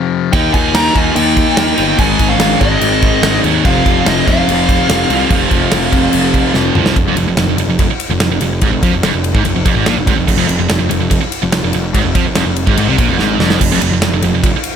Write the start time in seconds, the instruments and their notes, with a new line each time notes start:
Already playing: overdriven electric guitar F2 C3 F3
0.32 picked electric bass D#2, overdriven electric guitar D#3 A#3 D#4, lead electric guitar D#4 G5, kick, crash
0.53 picked electric bass D#2, lead electric guitar F4 G#5, kick, crash
0.74 picked electric bass D#2, lead electric guitar G4 A#5, snare, crash
0.94 picked electric bass D#2, overdriven electric guitar D#3 A#3 D#4, lead electric guitar F4 G#5, kick, crash
1.16 picked electric bass D#2, lead electric guitar D#4 G5, crash
1.37 kick, crash
1.57 picked electric bass D#2, overdriven electric guitar D#3 A#3 D#4, lead electric guitar D#4 G5, snare, crash
1.77 picked electric bass G1, distorted electric guitar D#3 A#3 D#4, crash
1.98 picked electric bass G#1, overdriven electric guitar G#2 D#3 G#3, lead electric guitar D#4 G#5, kick, crash
2.19 picked electric bass G#1, kick, crash
2.30 lead electric guitar C#4 F5
2.39 picked electric bass G#1, snare, crash
2.60 picked electric bass G#1, overdriven electric guitar D#3 G#3, lead electric guitar C4 D#5, kick, crash
2.65 overdriven electric guitar G#2
2.81 picked electric bass G#1, crash
3.02 kick, crash
3.22 picked electric bass G#1, overdriven electric guitar G#2 D#3 G#3, snare, crash
3.44 picked electric bass D#2, distorted electric guitar G#2 D#3 G#3, crash
3.64 picked electric bass F1, overdriven electric guitar F2 C3 F3, lead electric guitar C4 F5, kick, crash
3.86 picked electric bass F1, kick, crash
4.06 picked electric bass F1, lead electric guitar C4 D#5, snare, crash
4.26 picked electric bass F1, overdriven electric guitar F2 C3 F3, lead electric guitar C4 F5, kick, crash
4.48 picked electric bass F1, crash
4.69 kick, crash
4.88 picked electric bass F1, overdriven electric guitar F2 C3 F3, snare, crash
5.10 picked electric bass C2, distorted electric guitar F2 C3 F3, crash
5.29 picked electric bass F1, overdriven electric guitar F2 C3 F3, kick, crash
5.51 picked electric bass F1, kick, crash
5.72 picked electric bass F1, snare, crash
5.91 picked electric bass F1, overdriven electric guitar F2 C3 F3, kick, crash
6.13 picked electric bass F1, crash
6.34 kick, crash
6.53 picked electric bass F1, overdriven electric guitar F2 C3 F3, snare
6.75 picked electric bass C2, distorted electric guitar F2 C3 F3, mid tom
6.86 snare
6.96 picked electric bass F1, overdriven electric guitar F2, kick, ride
7.06 picked electric bass F1, overdriven electric guitar F2
7.17 picked electric bass F1, overdriven electric guitar F2, ride
7.26 picked electric bass F1, overdriven electric guitar F2
7.37 picked electric bass F1, overdriven electric guitar F2, snare, ride
7.48 picked electric bass F1, overdriven electric guitar F2
7.58 picked electric bass F1, overdriven electric guitar F2, ride
7.68 picked electric bass F1, overdriven electric guitar F2
7.79 picked electric bass F1, overdriven electric guitar F2, kick, ride
7.89 muted overdriven electric guitar stroke, muted picked electric bass stroke, muted distorted electric guitar stroke
8.00 ride
8.09 picked electric bass F1, overdriven electric guitar F2
8.19 picked electric bass F1, overdriven electric guitar F2, snare, ride
8.30 picked electric bass F1, overdriven electric guitar F2
8.40 picked electric bass F1, overdriven electric guitar F2, ride
8.61 picked electric bass G#1, overdriven electric guitar G#2, kick, ride
8.71 picked electric bass F1, overdriven electric guitar F2
8.83 picked electric bass F2, overdriven electric guitar F3, kick, ride
8.92 picked electric bass F1, overdriven electric guitar F2
9.03 picked electric bass F1, overdriven electric guitar F2, snare, ride
9.13 picked electric bass F1, overdriven electric guitar F2
9.24 ride
9.34 picked electric bass G#1, overdriven electric guitar G#2, kick
9.45 picked electric bass F1, overdriven electric guitar F2, ride
9.55 picked electric bass F1, overdriven electric guitar F2
9.65 picked electric bass F1, overdriven electric guitar F2, kick, ride
9.76 picked electric bass G#1, overdriven electric guitar G#2
9.86 picked electric bass A#1, overdriven electric guitar A#2, snare, ride
9.96 picked electric bass F1, overdriven electric guitar F2
10.07 picked electric bass G#1, overdriven electric guitar G#2, kick, ride
10.16 picked electric bass F1, overdriven electric guitar F2
10.27 picked electric bass F1, overdriven electric guitar F2, kick, crash
10.37 picked electric bass F1, overdriven electric guitar F2
10.48 picked electric bass F1, overdriven electric guitar F2, ride
10.59 picked electric bass F1, overdriven electric guitar F2
10.69 picked electric bass F1, overdriven electric guitar F2, snare, ride
10.80 picked electric bass F1, overdriven electric guitar F2
10.90 picked electric bass F1, overdriven electric guitar F2, ride
11.01 picked electric bass F1, overdriven electric guitar F2
11.10 picked electric bass F1, overdriven electric guitar F2, kick, ride
11.21 muted distorted electric guitar stroke, muted overdriven electric guitar stroke, muted picked electric bass stroke
11.32 ride
11.43 picked electric bass F1, overdriven electric guitar F2
11.52 picked electric bass F1, overdriven electric guitar F2, snare, ride
11.62 picked electric bass F1, overdriven electric guitar F2
11.73 picked electric bass F1, overdriven electric guitar F2, ride
11.93 picked electric bass G#1, overdriven electric guitar G#2, kick, ride
12.04 picked electric bass F1, overdriven electric guitar F2
12.14 picked electric bass F2, overdriven electric guitar F3, kick, ride
12.25 picked electric bass F1, overdriven electric guitar F2
12.35 picked electric bass F1, overdriven electric guitar F2, snare, ride
12.47 picked electric bass F1, overdriven electric guitar F2
12.56 ride
12.67 picked electric bass G#1, overdriven electric guitar G#2, kick
12.77 picked electric bass G#1, overdriven electric guitar G#2, ride
12.88 picked electric bass C2, overdriven electric guitar C3
12.98 picked electric bass A#1, overdriven electric guitar A#2, kick, ride
13.09 picked electric bass F1, overdriven electric guitar F2
13.19 picked electric bass G#1, overdriven electric guitar G#2, snare
13.40 picked electric bass F1, overdriven electric guitar F2, snare
13.50 snare
13.61 picked electric bass F1, overdriven electric guitar F2, kick, crash
13.71 picked electric bass F1, overdriven electric guitar F2
13.81 picked electric bass F1, overdriven electric guitar F2, ride
13.91 picked electric bass F1, overdriven electric guitar F2
14.01 picked electric bass F1, overdriven electric guitar F2, snare, ride
14.12 picked electric bass F1, overdriven electric guitar F2
14.22 picked electric bass F1, overdriven electric guitar F2, ride
14.34 picked electric bass F1, overdriven electric guitar F2
14.43 picked electric bass F1, overdriven electric guitar F2, kick, ride
14.54 muted overdriven electric guitar stroke, muted picked electric bass stroke, muted distorted electric guitar stroke
14.64 ride